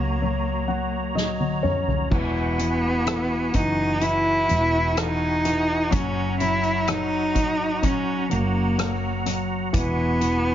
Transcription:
Already playing: C#2 F#3 A#3 F#4 C#5 A#5
0.22 F#3
0.68 F#3 F#5
1.15 F#3 D#5, snare
1.40 high tom
1.63 C#4 C#5, mid tom
1.88 floor tom
2.11 E1 E3 B3 F#4 F#5 G#5, kick, crash
2.59 E3, closed hi-hat
3.06 E3, cross-stick, closed hi-hat
3.53 F#1 E3 D#4, kick, closed hi-hat
4.01 E3 E4, closed hi-hat
4.49 E1 E3, closed hi-hat
4.97 E3 D#4, cross-stick, closed hi-hat
5.45 E3, cross-stick, closed hi-hat
5.91 F#1 F#3 C#4 A#5, kick, closed hi-hat
6.40 F#3 E4, closed hi-hat
6.63 closed hi-hat
6.87 F#3 D#4, cross-stick, closed hi-hat
7.35 G#1 F#3, kick, closed hi-hat
7.82 F#3 C#4, kick, closed hi-hat
8.30 F#1 F#3 A#3, closed hi-hat
8.78 F#3, cross-stick, closed hi-hat
9.26 F#3, cross-stick, closed hi-hat
9.73 E1 E3 B3 G#5, kick, closed hi-hat
10.21 E3, closed hi-hat

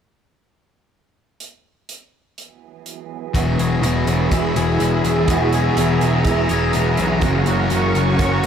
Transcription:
1.40 closed hi-hat
1.89 closed hi-hat
2.38 closed hi-hat
2.86 closed hi-hat
3.34 E1 E2 B2 E3 F#3 B3 E4 G#4 E5 F#5 B5, kick, closed hi-hat
3.58 E1 B3 E4 G#4, closed hi-hat
3.82 E1 E2 B2 E3 F#3 B3 E4 G#4, closed hi-hat
4.07 E1 F#3 B3 E4 G#4, closed hi-hat
4.31 E1 E2 B2 E3 F#3 B3 E4 G#4, kick, closed hi-hat
4.55 E1 B2 E3 B3 E4 G#4, closed hi-hat
4.80 E1 E2 B2 E3 F#3 B3 E4 G#4, closed hi-hat
5.05 E1 F#3 B3 E4 G#4, closed hi-hat
5.28 E1 E2 B2 E3 F#3 B3 E4 G#4 A#5, kick, closed hi-hat
5.53 B3 E4 G#4, closed hi-hat
5.76 E1 E2 B2 E3 F#3 B3 E4 G#4, closed hi-hat
6.01 E1 F#3 B3 E4 G#4, closed hi-hat
6.25 E1 E2 B2 E3 F#3 B3 E4, kick, closed hi-hat
6.29 G#4
6.49 E1 B2 E3 B3 E4 G#4, closed hi-hat
6.73 E1 E2 B2 E3 F#3 B3 E4, closed hi-hat
6.77 G#4
6.97 B1 F#3 B3 E4 G#4, closed hi-hat
7.21 F#1 F#2 C#3 F#3 A#3 A#4 C#5 C#6, kick, closed hi-hat
7.25 F#3 C#4 F#4
7.46 F#1 C#4 F#4, closed hi-hat
7.50 F#3 A#3
7.70 F#1 F#2 C#3 F#3 A#3 C#4, closed hi-hat
7.75 F#4
7.95 F#1 F#3 A#3 C#4 F#4, closed hi-hat
8.19 F#1 F#2 C#3 F#3 A#3 C#4 F#4, kick, closed hi-hat
8.43 F#1

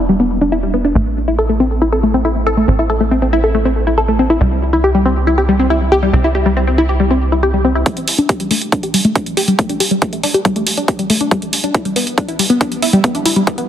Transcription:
Already playing: E1
0.09 G3
0.20 B3
0.41 D4
0.52 E4
0.63 G3
0.74 B3
0.85 D4
0.95 A1 A3
1.28 E4
1.39 A4
1.49 A3
1.60 C4
1.82 E4
1.93 A4
2.03 A3
2.14 C4
2.25 E4
2.47 A4
2.57 A3
2.68 A1 C4
2.79 E4
2.90 A4
3.01 A3
3.11 C4
3.22 C4
3.33 E4
3.44 A4
3.55 A3
3.65 C4
3.87 E4
3.98 A4
4.08 A3
4.19 C4
4.30 E4
4.41 C2 G3
4.73 E4
4.84 G4
4.95 G3
5.06 C4
5.27 E4
5.38 G4
5.49 G3
5.60 C4
5.70 E4
5.92 G4
6.03 G3
6.13 C2 C4
6.24 E4
6.35 G4
6.46 G3
6.57 C4
6.67 C4
6.78 E4
6.89 G4
7.00 G3
7.11 C4
7.32 E4
7.43 G4
7.54 G3
7.65 C4
7.75 E4
7.86 G3, kick, closed hi-hat
7.97 closed hi-hat
8.08 open hi-hat
8.18 D4, closed hi-hat
8.29 G4, kick, closed hi-hat
8.40 G3, closed hi-hat
8.51 A3, open hi-hat
8.62 closed hi-hat
8.72 D4, kick, closed hi-hat
8.83 G4, closed hi-hat
8.94 G3, open hi-hat
9.05 A3, closed hi-hat
9.16 D4, kick, closed hi-hat
9.26 closed hi-hat
9.37 G4, open hi-hat
9.48 G3, closed hi-hat
9.59 A3, kick, closed hi-hat
9.69 D4, closed hi-hat
9.80 G4, open hi-hat
9.91 G3, closed hi-hat
10.02 A3, kick, closed hi-hat
10.13 A3, closed hi-hat
10.23 D4, open hi-hat
10.34 G4, closed hi-hat
10.45 G3, kick, closed hi-hat
10.56 A3, closed hi-hat
10.67 open hi-hat
10.77 D4, closed hi-hat
10.88 G4, kick, closed hi-hat
10.99 G3, closed hi-hat
11.10 A3, open hi-hat
11.21 D4, closed hi-hat
11.31 G3, kick, closed hi-hat
11.42 closed hi-hat
11.53 open hi-hat
11.64 D4, closed hi-hat
11.74 E4, kick, closed hi-hat
11.85 G3, closed hi-hat
11.96 B3, open hi-hat
12.07 closed hi-hat
12.18 D4, kick, closed hi-hat
12.28 E4, closed hi-hat
12.39 G3, open hi-hat
12.50 B3, closed hi-hat
12.61 D4, kick, closed hi-hat
12.72 closed hi-hat
12.82 E4, open hi-hat
12.93 G3, closed hi-hat
13.04 B3, kick, closed hi-hat
13.15 D4, closed hi-hat
13.26 E4, open hi-hat
13.36 G3, closed hi-hat
13.47 B3, kick, closed hi-hat
13.58 B3, closed hi-hat

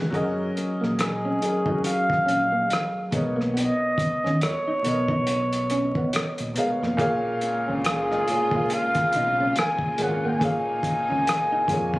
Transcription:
Already playing: G#3 G#4 A#4 B4 F#5
0.00 C#2
0.10 F#1 F#3 C#4 F#4 G#4 A#4, kick, closed hi-hat
0.15 D#5
0.57 muted clean electric guitar stroke, closed hi-hat
0.81 A#1 A#3, cross-stick
0.99 G#4, cross-stick, closed hi-hat
1.25 C#4
1.40 F#3 C#4 G#4 A#4, muted clean electric guitar stroke, muted fingered electric bass stroke, closed hi-hat
1.45 D#5
1.64 G#1 F#3 C#4 D#4 G#4, kick
1.68 F#4 A#4
1.83 F5, muted clean electric guitar stroke, closed hi-hat
2.10 kick, cross-stick
2.26 A#1 C#4, closed hi-hat
2.52 A#3
2.68 muted clean electric guitar stroke, closed hi-hat
2.73 cross-stick
3.11 B1 B2 G#3 B3 A#4 C#5, kick, closed hi-hat
3.16 D#5
3.36 A#3
3.41 cross-stick
3.54 B3 D#5, closed hi-hat
3.98 muted clean electric guitar stroke, muted fingered electric bass stroke, kick, closed hi-hat
4.24 D#2 C#4, cross-stick
4.41 C#5, cross-stick, closed hi-hat
4.68 D#4
4.82 B1 B2 B3 A#4, muted clean electric guitar stroke, closed hi-hat
4.87 C#5 D#5
5.08 D#4, kick
5.27 muted clean electric guitar stroke, closed hi-hat
5.53 closed hi-hat
5.70 C#4, closed hi-hat
5.95 B3, kick
6.13 muted fingered electric bass stroke, muted clean electric guitar stroke, cross-stick, closed hi-hat
6.38 A#1, closed hi-hat
6.54 B2 G#3 B3 A#4 C#5, closed hi-hat
6.59 F5
6.82 F1 A#3, cross-stick
6.97 A#1 A#2 C#3 G#3 A#3 F4 G#4 C#5, kick, closed hi-hat
7.02 F5
7.41 muted clean electric guitar stroke, closed hi-hat
7.68 C#2 C#4
7.84 G#4, cross-stick, closed hi-hat
8.11 D#4, cross-stick
8.26 A#2 A#3 G#4 C#5, muted clean electric guitar stroke, muted fingered electric bass stroke, closed hi-hat
8.31 G#5
8.51 A#1 A#2 A#3 G#4 C#5, kick
8.55 F4 F5
8.70 F5, muted clean electric guitar stroke, closed hi-hat
8.95 kick, cross-stick, closed hi-hat
9.13 B1 D#4, closed hi-hat
9.40 C#4
9.56 G#5, muted clean electric guitar stroke, cross-stick, closed hi-hat
9.79 kick
9.97 G#1 A#2 G#3 A#3 G#4 C#5, closed hi-hat
10.02 F#5 G#5
10.25 A#3 G#5
10.40 A#2 A#3 D#4 G#4 C#5, kick, closed hi-hat
10.45 F5
10.83 muted fingered electric bass stroke, muted clean electric guitar stroke, kick, closed hi-hat
11.09 C#2 C#4
11.27 cross-stick, closed hi-hat
11.52 D#4
11.68 F2 A#2 A#3 G#4 C#5, muted clean electric guitar stroke, kick, closed hi-hat
11.72 G#5
11.94 kick

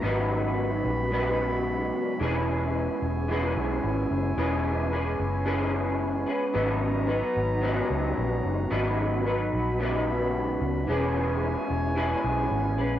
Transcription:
Already playing: B3 F#4 C#5
0.01 G#1 G#2 C#3 F#3 B3 D#4 B4 B5
0.85 A#1
1.10 G#2 C#3 F#3 B3 D#4 B4
2.20 E1 E3 G#3 C#4 E4 G#4 B4 G#5
3.02 E1
3.28 E3 G#3 C#4 G#4 B4
3.57 B1
3.84 G#1
4.11 F#1
4.37 E1 E3 G#3 C#4 G#4 B4
4.91 G#3 C#4 G#4 B4
5.19 F#1
5.45 E3 G#3 C#4 G#4 B4
6.26 C#4 G#4 B4
6.53 G#1 G#2 C#3 F#3 B3 D#4 F#4 B4 A#5
7.07 F#3 B3 D#4 B4
7.36 G#1
7.61 G#2 C#3 F#3 B3 D#4 B4
7.90 C#2
8.18 A#1
8.44 F#1
8.70 G#1 G#2 C#3 F#3 B3 D#4 B4 B5
9.25 F#3 B3 D#4 B4
9.53 A#1
9.79 G#2 C#3 F#3 B3 D#4 B4
10.61 C#2
10.87 E1 E3 G#3 B3 C#4 E4 G#4 B4 C#5 G#5
11.70 E1
11.95 E3 G#3 C#4 G#4 B4
12.24 B1
12.51 G#1
12.78 A#1 C#4 G#4 B4

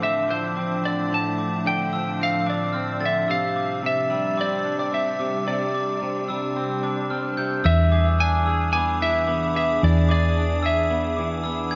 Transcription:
Already playing: A2 D3 F3 A3 D4
0.02 C4 E5 D6
0.29 D4 C5
0.56 C4 D6
0.84 D3 D5 D6
1.11 A2 A5
1.38 D6
1.65 D3 G5
1.93 F3 E6
2.19 C4 F5
2.46 D4 D5 D6
2.73 C4 F6
3.01 D3 A6
3.06 E5
3.28 C3 G3 D4 F5 E6
3.56 D6
3.83 C3 E5
4.10 G3 E6
4.37 C4 D5 D6
4.65 D4
4.79 D5
4.92 C4 E5 D6
5.20 C3 D6
5.47 C3 D5
5.74 D6
6.02 C3
6.28 G3 E6
6.56 C4
6.83 D4 D6
7.10 C4 F6
7.37 C3 G6
7.64 E2 E3 D4 G#4 E5 E6
7.92 G#4 D6
8.20 D4 G#5
8.46 G#4 E6
8.73 B3 G#5 D6
9.01 E3 E5
9.27 B3 D6
9.54 G#4 E5 D6
9.83 E2 E3 D5
10.09 G#4 D5 D6
10.37 D4
10.63 G#4 E5 E6
10.91 B3
11.17 E3 D6
11.44 B3 E6
11.71 G#4 G#6

